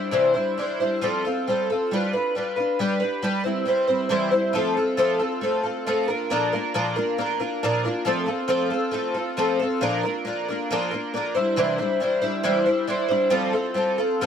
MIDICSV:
0, 0, Header, 1, 2, 480
1, 0, Start_track
1, 0, Tempo, 439560
1, 1118, Time_signature, 4, 2, 24, 8
1, 15572, End_track
2, 0, Start_track
2, 0, Title_t, "Twelve-string acoustic guitar"
2, 0, Program_c, 0, 25
2, 0, Note_on_c, 0, 55, 44
2, 0, Note_on_c, 0, 62, 48
2, 0, Note_on_c, 0, 64, 53
2, 0, Note_on_c, 0, 72, 54
2, 125, Note_on_c, 0, 48, 71
2, 127, Note_off_c, 0, 55, 0
2, 129, Note_off_c, 0, 62, 0
2, 133, Note_off_c, 0, 72, 0
2, 134, Note_on_c, 0, 52, 70
2, 135, Note_off_c, 0, 64, 0
2, 141, Note_on_c, 0, 55, 73
2, 142, Note_on_c, 0, 62, 74
2, 146, Note_on_c, 0, 72, 84
2, 148, Note_on_c, 0, 64, 74
2, 356, Note_off_c, 0, 72, 0
2, 369, Note_on_c, 0, 72, 48
2, 372, Note_off_c, 0, 64, 0
2, 380, Note_off_c, 0, 48, 0
2, 383, Note_off_c, 0, 62, 0
2, 384, Note_off_c, 0, 52, 0
2, 385, Note_on_c, 0, 64, 47
2, 388, Note_off_c, 0, 55, 0
2, 396, Note_on_c, 0, 62, 39
2, 408, Note_on_c, 0, 55, 35
2, 616, Note_off_c, 0, 55, 0
2, 623, Note_off_c, 0, 72, 0
2, 629, Note_on_c, 0, 55, 56
2, 630, Note_off_c, 0, 62, 0
2, 631, Note_off_c, 0, 64, 0
2, 643, Note_on_c, 0, 62, 62
2, 652, Note_on_c, 0, 64, 62
2, 667, Note_on_c, 0, 72, 64
2, 859, Note_off_c, 0, 72, 0
2, 869, Note_off_c, 0, 64, 0
2, 872, Note_on_c, 0, 72, 48
2, 874, Note_off_c, 0, 55, 0
2, 881, Note_off_c, 0, 62, 0
2, 882, Note_on_c, 0, 64, 48
2, 894, Note_on_c, 0, 62, 49
2, 910, Note_on_c, 0, 55, 44
2, 1102, Note_off_c, 0, 55, 0
2, 1108, Note_on_c, 0, 53, 79
2, 1115, Note_off_c, 0, 62, 0
2, 1115, Note_on_c, 0, 55, 74
2, 1116, Note_off_c, 0, 72, 0
2, 1119, Note_on_c, 0, 60, 80
2, 1121, Note_off_c, 0, 64, 0
2, 1128, Note_on_c, 0, 65, 84
2, 1136, Note_on_c, 0, 69, 80
2, 1351, Note_off_c, 0, 69, 0
2, 1355, Note_off_c, 0, 53, 0
2, 1358, Note_off_c, 0, 55, 0
2, 1360, Note_off_c, 0, 60, 0
2, 1364, Note_on_c, 0, 69, 51
2, 1365, Note_off_c, 0, 65, 0
2, 1379, Note_on_c, 0, 65, 49
2, 1394, Note_on_c, 0, 60, 42
2, 1604, Note_off_c, 0, 69, 0
2, 1606, Note_off_c, 0, 60, 0
2, 1611, Note_off_c, 0, 65, 0
2, 1611, Note_on_c, 0, 55, 58
2, 1619, Note_on_c, 0, 60, 55
2, 1630, Note_on_c, 0, 65, 58
2, 1638, Note_on_c, 0, 69, 62
2, 1843, Note_off_c, 0, 69, 0
2, 1848, Note_off_c, 0, 55, 0
2, 1852, Note_off_c, 0, 60, 0
2, 1856, Note_on_c, 0, 69, 52
2, 1857, Note_off_c, 0, 65, 0
2, 1878, Note_on_c, 0, 65, 47
2, 1893, Note_on_c, 0, 60, 40
2, 2089, Note_on_c, 0, 55, 66
2, 2091, Note_off_c, 0, 69, 0
2, 2102, Note_off_c, 0, 65, 0
2, 2105, Note_off_c, 0, 60, 0
2, 2109, Note_on_c, 0, 62, 74
2, 2113, Note_on_c, 0, 65, 77
2, 2117, Note_on_c, 0, 71, 77
2, 2315, Note_off_c, 0, 71, 0
2, 2328, Note_off_c, 0, 55, 0
2, 2328, Note_on_c, 0, 71, 48
2, 2333, Note_off_c, 0, 65, 0
2, 2338, Note_off_c, 0, 62, 0
2, 2346, Note_on_c, 0, 65, 43
2, 2368, Note_on_c, 0, 62, 39
2, 2566, Note_off_c, 0, 62, 0
2, 2568, Note_off_c, 0, 71, 0
2, 2568, Note_on_c, 0, 55, 51
2, 2577, Note_off_c, 0, 65, 0
2, 2579, Note_on_c, 0, 62, 54
2, 2593, Note_on_c, 0, 65, 57
2, 2600, Note_on_c, 0, 71, 62
2, 2785, Note_off_c, 0, 71, 0
2, 2797, Note_off_c, 0, 65, 0
2, 2798, Note_on_c, 0, 71, 49
2, 2809, Note_off_c, 0, 55, 0
2, 2810, Note_on_c, 0, 65, 46
2, 2814, Note_off_c, 0, 62, 0
2, 2836, Note_on_c, 0, 62, 41
2, 3044, Note_off_c, 0, 71, 0
2, 3046, Note_off_c, 0, 62, 0
2, 3050, Note_off_c, 0, 65, 0
2, 3050, Note_on_c, 0, 55, 82
2, 3059, Note_on_c, 0, 62, 72
2, 3069, Note_on_c, 0, 67, 81
2, 3078, Note_on_c, 0, 71, 79
2, 3261, Note_off_c, 0, 71, 0
2, 3274, Note_on_c, 0, 71, 54
2, 3283, Note_off_c, 0, 67, 0
2, 3290, Note_off_c, 0, 55, 0
2, 3295, Note_off_c, 0, 62, 0
2, 3296, Note_on_c, 0, 67, 44
2, 3317, Note_on_c, 0, 62, 41
2, 3521, Note_off_c, 0, 62, 0
2, 3521, Note_on_c, 0, 55, 73
2, 3523, Note_off_c, 0, 71, 0
2, 3526, Note_off_c, 0, 67, 0
2, 3534, Note_on_c, 0, 62, 79
2, 3539, Note_on_c, 0, 67, 81
2, 3543, Note_on_c, 0, 71, 75
2, 3750, Note_off_c, 0, 71, 0
2, 3754, Note_on_c, 0, 72, 54
2, 3767, Note_off_c, 0, 55, 0
2, 3768, Note_off_c, 0, 67, 0
2, 3773, Note_off_c, 0, 62, 0
2, 3773, Note_on_c, 0, 64, 50
2, 3781, Note_on_c, 0, 60, 50
2, 3795, Note_on_c, 0, 55, 45
2, 3977, Note_off_c, 0, 55, 0
2, 3990, Note_off_c, 0, 60, 0
2, 3990, Note_on_c, 0, 55, 54
2, 4003, Note_on_c, 0, 60, 62
2, 4004, Note_off_c, 0, 72, 0
2, 4005, Note_off_c, 0, 64, 0
2, 4018, Note_on_c, 0, 64, 64
2, 4026, Note_on_c, 0, 72, 62
2, 4217, Note_off_c, 0, 72, 0
2, 4227, Note_off_c, 0, 64, 0
2, 4231, Note_on_c, 0, 72, 51
2, 4238, Note_off_c, 0, 60, 0
2, 4240, Note_on_c, 0, 64, 46
2, 4242, Note_off_c, 0, 55, 0
2, 4251, Note_on_c, 0, 60, 42
2, 4262, Note_on_c, 0, 55, 39
2, 4468, Note_on_c, 0, 48, 74
2, 4469, Note_off_c, 0, 60, 0
2, 4470, Note_off_c, 0, 55, 0
2, 4473, Note_off_c, 0, 64, 0
2, 4473, Note_on_c, 0, 52, 81
2, 4478, Note_off_c, 0, 72, 0
2, 4482, Note_on_c, 0, 60, 75
2, 4483, Note_on_c, 0, 55, 77
2, 4486, Note_on_c, 0, 64, 87
2, 4491, Note_on_c, 0, 72, 87
2, 4696, Note_off_c, 0, 72, 0
2, 4706, Note_off_c, 0, 64, 0
2, 4709, Note_on_c, 0, 72, 52
2, 4720, Note_on_c, 0, 64, 49
2, 4721, Note_off_c, 0, 48, 0
2, 4723, Note_off_c, 0, 52, 0
2, 4723, Note_off_c, 0, 60, 0
2, 4728, Note_off_c, 0, 55, 0
2, 4736, Note_on_c, 0, 60, 48
2, 4752, Note_on_c, 0, 55, 44
2, 4947, Note_on_c, 0, 53, 84
2, 4955, Note_off_c, 0, 60, 0
2, 4959, Note_off_c, 0, 55, 0
2, 4962, Note_off_c, 0, 72, 0
2, 4964, Note_on_c, 0, 57, 79
2, 4966, Note_off_c, 0, 64, 0
2, 4968, Note_on_c, 0, 60, 84
2, 4971, Note_on_c, 0, 65, 82
2, 4979, Note_on_c, 0, 69, 96
2, 5195, Note_off_c, 0, 69, 0
2, 5201, Note_off_c, 0, 53, 0
2, 5206, Note_off_c, 0, 65, 0
2, 5208, Note_on_c, 0, 69, 56
2, 5209, Note_off_c, 0, 57, 0
2, 5211, Note_off_c, 0, 60, 0
2, 5219, Note_on_c, 0, 65, 48
2, 5237, Note_on_c, 0, 60, 46
2, 5428, Note_off_c, 0, 60, 0
2, 5429, Note_on_c, 0, 53, 75
2, 5434, Note_off_c, 0, 65, 0
2, 5434, Note_on_c, 0, 57, 80
2, 5440, Note_off_c, 0, 69, 0
2, 5441, Note_on_c, 0, 60, 87
2, 5447, Note_on_c, 0, 65, 85
2, 5453, Note_on_c, 0, 69, 89
2, 5658, Note_off_c, 0, 69, 0
2, 5672, Note_off_c, 0, 65, 0
2, 5672, Note_on_c, 0, 69, 55
2, 5682, Note_off_c, 0, 53, 0
2, 5684, Note_off_c, 0, 57, 0
2, 5684, Note_off_c, 0, 60, 0
2, 5685, Note_on_c, 0, 65, 47
2, 5697, Note_on_c, 0, 60, 46
2, 5909, Note_on_c, 0, 57, 61
2, 5918, Note_off_c, 0, 60, 0
2, 5920, Note_off_c, 0, 65, 0
2, 5923, Note_off_c, 0, 69, 0
2, 5931, Note_on_c, 0, 60, 62
2, 5933, Note_on_c, 0, 65, 63
2, 5945, Note_on_c, 0, 69, 67
2, 6140, Note_off_c, 0, 69, 0
2, 6153, Note_on_c, 0, 69, 47
2, 6159, Note_off_c, 0, 65, 0
2, 6162, Note_off_c, 0, 57, 0
2, 6172, Note_on_c, 0, 65, 43
2, 6173, Note_off_c, 0, 60, 0
2, 6184, Note_on_c, 0, 60, 41
2, 6403, Note_off_c, 0, 65, 0
2, 6403, Note_off_c, 0, 69, 0
2, 6405, Note_on_c, 0, 53, 79
2, 6406, Note_off_c, 0, 60, 0
2, 6411, Note_on_c, 0, 57, 83
2, 6416, Note_on_c, 0, 65, 87
2, 6419, Note_on_c, 0, 60, 84
2, 6428, Note_on_c, 0, 69, 86
2, 6633, Note_off_c, 0, 69, 0
2, 6638, Note_on_c, 0, 70, 58
2, 6639, Note_off_c, 0, 65, 0
2, 6649, Note_off_c, 0, 53, 0
2, 6652, Note_off_c, 0, 57, 0
2, 6652, Note_off_c, 0, 60, 0
2, 6652, Note_on_c, 0, 65, 51
2, 6657, Note_on_c, 0, 62, 46
2, 6664, Note_on_c, 0, 58, 48
2, 6880, Note_off_c, 0, 58, 0
2, 6882, Note_off_c, 0, 62, 0
2, 6882, Note_on_c, 0, 46, 76
2, 6886, Note_off_c, 0, 70, 0
2, 6891, Note_on_c, 0, 53, 83
2, 6893, Note_off_c, 0, 65, 0
2, 6893, Note_on_c, 0, 58, 82
2, 6895, Note_on_c, 0, 62, 89
2, 6907, Note_on_c, 0, 65, 90
2, 6910, Note_on_c, 0, 70, 87
2, 7113, Note_off_c, 0, 70, 0
2, 7124, Note_off_c, 0, 65, 0
2, 7127, Note_on_c, 0, 70, 55
2, 7128, Note_off_c, 0, 46, 0
2, 7132, Note_off_c, 0, 53, 0
2, 7133, Note_off_c, 0, 58, 0
2, 7134, Note_off_c, 0, 62, 0
2, 7137, Note_on_c, 0, 65, 51
2, 7150, Note_on_c, 0, 62, 47
2, 7160, Note_on_c, 0, 58, 47
2, 7356, Note_off_c, 0, 58, 0
2, 7362, Note_off_c, 0, 62, 0
2, 7362, Note_on_c, 0, 46, 82
2, 7363, Note_off_c, 0, 65, 0
2, 7368, Note_on_c, 0, 53, 77
2, 7370, Note_off_c, 0, 70, 0
2, 7370, Note_on_c, 0, 58, 85
2, 7375, Note_on_c, 0, 62, 86
2, 7376, Note_on_c, 0, 65, 87
2, 7387, Note_on_c, 0, 70, 81
2, 7586, Note_off_c, 0, 70, 0
2, 7599, Note_on_c, 0, 70, 61
2, 7600, Note_off_c, 0, 65, 0
2, 7608, Note_off_c, 0, 46, 0
2, 7610, Note_off_c, 0, 53, 0
2, 7611, Note_off_c, 0, 58, 0
2, 7613, Note_on_c, 0, 65, 52
2, 7614, Note_off_c, 0, 62, 0
2, 7628, Note_on_c, 0, 58, 47
2, 7628, Note_on_c, 0, 62, 52
2, 7829, Note_off_c, 0, 58, 0
2, 7833, Note_off_c, 0, 62, 0
2, 7843, Note_on_c, 0, 58, 65
2, 7846, Note_off_c, 0, 70, 0
2, 7846, Note_on_c, 0, 62, 70
2, 7853, Note_off_c, 0, 65, 0
2, 7865, Note_on_c, 0, 65, 72
2, 7874, Note_on_c, 0, 70, 71
2, 8064, Note_off_c, 0, 70, 0
2, 8074, Note_off_c, 0, 65, 0
2, 8077, Note_on_c, 0, 70, 55
2, 8082, Note_off_c, 0, 62, 0
2, 8088, Note_off_c, 0, 58, 0
2, 8088, Note_on_c, 0, 65, 54
2, 8096, Note_on_c, 0, 62, 46
2, 8113, Note_on_c, 0, 58, 44
2, 8324, Note_off_c, 0, 70, 0
2, 8327, Note_off_c, 0, 58, 0
2, 8330, Note_off_c, 0, 65, 0
2, 8330, Note_on_c, 0, 46, 77
2, 8333, Note_on_c, 0, 53, 79
2, 8334, Note_off_c, 0, 62, 0
2, 8340, Note_on_c, 0, 58, 76
2, 8346, Note_on_c, 0, 62, 91
2, 8349, Note_on_c, 0, 65, 88
2, 8354, Note_on_c, 0, 70, 94
2, 8557, Note_off_c, 0, 70, 0
2, 8566, Note_off_c, 0, 65, 0
2, 8570, Note_on_c, 0, 70, 57
2, 8571, Note_off_c, 0, 46, 0
2, 8572, Note_off_c, 0, 53, 0
2, 8576, Note_off_c, 0, 58, 0
2, 8579, Note_off_c, 0, 62, 0
2, 8579, Note_on_c, 0, 65, 57
2, 8597, Note_on_c, 0, 62, 48
2, 8600, Note_on_c, 0, 58, 48
2, 8789, Note_on_c, 0, 53, 84
2, 8796, Note_off_c, 0, 58, 0
2, 8798, Note_off_c, 0, 65, 0
2, 8800, Note_on_c, 0, 57, 86
2, 8801, Note_off_c, 0, 62, 0
2, 8805, Note_on_c, 0, 60, 81
2, 8811, Note_off_c, 0, 70, 0
2, 8811, Note_on_c, 0, 65, 86
2, 8819, Note_on_c, 0, 69, 92
2, 9007, Note_off_c, 0, 69, 0
2, 9021, Note_on_c, 0, 69, 56
2, 9026, Note_off_c, 0, 65, 0
2, 9038, Note_off_c, 0, 60, 0
2, 9039, Note_on_c, 0, 65, 55
2, 9040, Note_off_c, 0, 53, 0
2, 9046, Note_off_c, 0, 57, 0
2, 9051, Note_on_c, 0, 60, 47
2, 9257, Note_on_c, 0, 53, 82
2, 9262, Note_off_c, 0, 60, 0
2, 9264, Note_on_c, 0, 57, 82
2, 9268, Note_off_c, 0, 65, 0
2, 9270, Note_off_c, 0, 69, 0
2, 9275, Note_on_c, 0, 60, 88
2, 9281, Note_on_c, 0, 65, 90
2, 9283, Note_on_c, 0, 69, 90
2, 9489, Note_off_c, 0, 69, 0
2, 9502, Note_off_c, 0, 65, 0
2, 9502, Note_on_c, 0, 69, 59
2, 9514, Note_off_c, 0, 53, 0
2, 9515, Note_on_c, 0, 65, 55
2, 9517, Note_off_c, 0, 57, 0
2, 9523, Note_off_c, 0, 60, 0
2, 9539, Note_on_c, 0, 60, 53
2, 9733, Note_off_c, 0, 60, 0
2, 9733, Note_on_c, 0, 57, 66
2, 9746, Note_on_c, 0, 60, 65
2, 9748, Note_off_c, 0, 65, 0
2, 9751, Note_off_c, 0, 69, 0
2, 9762, Note_on_c, 0, 65, 71
2, 9764, Note_on_c, 0, 69, 71
2, 9972, Note_off_c, 0, 69, 0
2, 9986, Note_on_c, 0, 69, 56
2, 9991, Note_off_c, 0, 57, 0
2, 9995, Note_off_c, 0, 65, 0
2, 9998, Note_off_c, 0, 60, 0
2, 10009, Note_on_c, 0, 65, 50
2, 10021, Note_on_c, 0, 60, 42
2, 10231, Note_on_c, 0, 53, 84
2, 10233, Note_off_c, 0, 60, 0
2, 10237, Note_off_c, 0, 69, 0
2, 10239, Note_off_c, 0, 65, 0
2, 10239, Note_on_c, 0, 57, 85
2, 10246, Note_on_c, 0, 60, 91
2, 10252, Note_on_c, 0, 65, 93
2, 10254, Note_on_c, 0, 69, 91
2, 10465, Note_off_c, 0, 69, 0
2, 10479, Note_off_c, 0, 53, 0
2, 10479, Note_on_c, 0, 69, 60
2, 10483, Note_off_c, 0, 57, 0
2, 10487, Note_off_c, 0, 60, 0
2, 10490, Note_off_c, 0, 65, 0
2, 10504, Note_on_c, 0, 65, 55
2, 10515, Note_on_c, 0, 60, 49
2, 10711, Note_on_c, 0, 46, 82
2, 10714, Note_on_c, 0, 53, 84
2, 10719, Note_off_c, 0, 65, 0
2, 10723, Note_off_c, 0, 69, 0
2, 10726, Note_off_c, 0, 60, 0
2, 10728, Note_on_c, 0, 58, 82
2, 10730, Note_on_c, 0, 62, 86
2, 10732, Note_on_c, 0, 65, 82
2, 10732, Note_on_c, 0, 70, 102
2, 10941, Note_off_c, 0, 70, 0
2, 10955, Note_on_c, 0, 70, 56
2, 10959, Note_off_c, 0, 46, 0
2, 10961, Note_off_c, 0, 53, 0
2, 10961, Note_off_c, 0, 65, 0
2, 10967, Note_off_c, 0, 58, 0
2, 10969, Note_off_c, 0, 62, 0
2, 10974, Note_on_c, 0, 65, 49
2, 10985, Note_on_c, 0, 62, 50
2, 10992, Note_on_c, 0, 58, 46
2, 11178, Note_off_c, 0, 58, 0
2, 11191, Note_on_c, 0, 58, 64
2, 11197, Note_off_c, 0, 62, 0
2, 11200, Note_off_c, 0, 70, 0
2, 11203, Note_off_c, 0, 65, 0
2, 11210, Note_on_c, 0, 62, 66
2, 11216, Note_on_c, 0, 65, 70
2, 11229, Note_on_c, 0, 70, 70
2, 11437, Note_off_c, 0, 70, 0
2, 11438, Note_off_c, 0, 58, 0
2, 11448, Note_off_c, 0, 62, 0
2, 11450, Note_on_c, 0, 70, 53
2, 11451, Note_off_c, 0, 65, 0
2, 11466, Note_on_c, 0, 65, 54
2, 11470, Note_on_c, 0, 62, 52
2, 11486, Note_on_c, 0, 58, 49
2, 11687, Note_off_c, 0, 70, 0
2, 11690, Note_on_c, 0, 46, 83
2, 11695, Note_off_c, 0, 58, 0
2, 11696, Note_off_c, 0, 65, 0
2, 11697, Note_off_c, 0, 62, 0
2, 11702, Note_on_c, 0, 53, 84
2, 11708, Note_on_c, 0, 58, 90
2, 11709, Note_on_c, 0, 62, 90
2, 11714, Note_on_c, 0, 70, 87
2, 11717, Note_on_c, 0, 65, 96
2, 11903, Note_off_c, 0, 70, 0
2, 11913, Note_off_c, 0, 65, 0
2, 11916, Note_on_c, 0, 70, 52
2, 11926, Note_on_c, 0, 65, 49
2, 11927, Note_off_c, 0, 46, 0
2, 11933, Note_off_c, 0, 53, 0
2, 11933, Note_off_c, 0, 62, 0
2, 11936, Note_off_c, 0, 58, 0
2, 11946, Note_on_c, 0, 62, 47
2, 11955, Note_on_c, 0, 58, 43
2, 12148, Note_off_c, 0, 58, 0
2, 12158, Note_off_c, 0, 62, 0
2, 12160, Note_off_c, 0, 70, 0
2, 12161, Note_on_c, 0, 58, 60
2, 12165, Note_off_c, 0, 65, 0
2, 12171, Note_on_c, 0, 62, 61
2, 12191, Note_on_c, 0, 65, 72
2, 12200, Note_on_c, 0, 70, 73
2, 12386, Note_off_c, 0, 70, 0
2, 12391, Note_on_c, 0, 72, 66
2, 12400, Note_off_c, 0, 65, 0
2, 12401, Note_off_c, 0, 62, 0
2, 12402, Note_off_c, 0, 58, 0
2, 12404, Note_on_c, 0, 64, 57
2, 12414, Note_on_c, 0, 62, 51
2, 12431, Note_on_c, 0, 55, 49
2, 12622, Note_off_c, 0, 55, 0
2, 12626, Note_on_c, 0, 48, 82
2, 12630, Note_off_c, 0, 62, 0
2, 12635, Note_on_c, 0, 55, 89
2, 12636, Note_off_c, 0, 72, 0
2, 12636, Note_on_c, 0, 52, 93
2, 12638, Note_off_c, 0, 64, 0
2, 12644, Note_on_c, 0, 62, 85
2, 12648, Note_on_c, 0, 72, 91
2, 12651, Note_on_c, 0, 64, 91
2, 12854, Note_off_c, 0, 72, 0
2, 12866, Note_off_c, 0, 64, 0
2, 12867, Note_on_c, 0, 72, 55
2, 12874, Note_off_c, 0, 48, 0
2, 12877, Note_off_c, 0, 62, 0
2, 12878, Note_off_c, 0, 55, 0
2, 12879, Note_off_c, 0, 52, 0
2, 12879, Note_on_c, 0, 64, 55
2, 12890, Note_on_c, 0, 62, 48
2, 12908, Note_on_c, 0, 55, 52
2, 13092, Note_off_c, 0, 55, 0
2, 13105, Note_off_c, 0, 62, 0
2, 13105, Note_on_c, 0, 55, 64
2, 13114, Note_off_c, 0, 72, 0
2, 13116, Note_off_c, 0, 64, 0
2, 13118, Note_on_c, 0, 62, 71
2, 13129, Note_on_c, 0, 64, 65
2, 13140, Note_on_c, 0, 72, 68
2, 13327, Note_off_c, 0, 72, 0
2, 13338, Note_off_c, 0, 64, 0
2, 13340, Note_on_c, 0, 72, 62
2, 13348, Note_off_c, 0, 62, 0
2, 13351, Note_on_c, 0, 64, 59
2, 13353, Note_off_c, 0, 55, 0
2, 13361, Note_on_c, 0, 62, 54
2, 13373, Note_on_c, 0, 55, 47
2, 13572, Note_off_c, 0, 62, 0
2, 13576, Note_off_c, 0, 55, 0
2, 13578, Note_on_c, 0, 48, 81
2, 13580, Note_on_c, 0, 52, 83
2, 13582, Note_off_c, 0, 64, 0
2, 13585, Note_on_c, 0, 62, 81
2, 13589, Note_on_c, 0, 55, 90
2, 13590, Note_off_c, 0, 72, 0
2, 13595, Note_on_c, 0, 64, 91
2, 13601, Note_on_c, 0, 72, 94
2, 13806, Note_off_c, 0, 72, 0
2, 13814, Note_off_c, 0, 64, 0
2, 13819, Note_on_c, 0, 72, 54
2, 13827, Note_on_c, 0, 64, 53
2, 13828, Note_off_c, 0, 48, 0
2, 13829, Note_off_c, 0, 52, 0
2, 13829, Note_off_c, 0, 62, 0
2, 13834, Note_off_c, 0, 55, 0
2, 13842, Note_on_c, 0, 62, 47
2, 13851, Note_on_c, 0, 55, 42
2, 14046, Note_off_c, 0, 55, 0
2, 14053, Note_off_c, 0, 62, 0
2, 14059, Note_on_c, 0, 55, 72
2, 14066, Note_on_c, 0, 62, 69
2, 14068, Note_off_c, 0, 64, 0
2, 14069, Note_off_c, 0, 72, 0
2, 14081, Note_on_c, 0, 64, 73
2, 14087, Note_on_c, 0, 72, 73
2, 14275, Note_off_c, 0, 72, 0
2, 14288, Note_on_c, 0, 72, 61
2, 14296, Note_off_c, 0, 64, 0
2, 14304, Note_off_c, 0, 62, 0
2, 14308, Note_off_c, 0, 55, 0
2, 14309, Note_on_c, 0, 64, 52
2, 14317, Note_on_c, 0, 62, 56
2, 14319, Note_on_c, 0, 55, 50
2, 14516, Note_off_c, 0, 55, 0
2, 14525, Note_on_c, 0, 53, 91
2, 14529, Note_on_c, 0, 55, 93
2, 14530, Note_off_c, 0, 62, 0
2, 14534, Note_on_c, 0, 60, 93
2, 14536, Note_off_c, 0, 64, 0
2, 14540, Note_on_c, 0, 65, 92
2, 14543, Note_off_c, 0, 72, 0
2, 14548, Note_on_c, 0, 69, 93
2, 14763, Note_off_c, 0, 69, 0
2, 14776, Note_on_c, 0, 69, 57
2, 14778, Note_off_c, 0, 65, 0
2, 14781, Note_off_c, 0, 53, 0
2, 14782, Note_off_c, 0, 55, 0
2, 14785, Note_off_c, 0, 60, 0
2, 14791, Note_on_c, 0, 65, 56
2, 14808, Note_on_c, 0, 60, 47
2, 15005, Note_off_c, 0, 60, 0
2, 15006, Note_on_c, 0, 55, 67
2, 15018, Note_off_c, 0, 65, 0
2, 15019, Note_on_c, 0, 60, 66
2, 15026, Note_off_c, 0, 69, 0
2, 15032, Note_on_c, 0, 65, 68
2, 15043, Note_on_c, 0, 69, 72
2, 15253, Note_off_c, 0, 69, 0
2, 15261, Note_off_c, 0, 55, 0
2, 15266, Note_on_c, 0, 69, 59
2, 15267, Note_off_c, 0, 60, 0
2, 15268, Note_off_c, 0, 65, 0
2, 15281, Note_on_c, 0, 65, 59
2, 15294, Note_on_c, 0, 60, 47
2, 15510, Note_off_c, 0, 69, 0
2, 15514, Note_off_c, 0, 60, 0
2, 15518, Note_off_c, 0, 65, 0
2, 15519, Note_on_c, 0, 53, 83
2, 15522, Note_on_c, 0, 55, 86
2, 15527, Note_on_c, 0, 60, 85
2, 15531, Note_on_c, 0, 65, 91
2, 15572, Note_off_c, 0, 53, 0
2, 15572, Note_off_c, 0, 55, 0
2, 15572, Note_off_c, 0, 60, 0
2, 15572, Note_off_c, 0, 65, 0
2, 15572, End_track
0, 0, End_of_file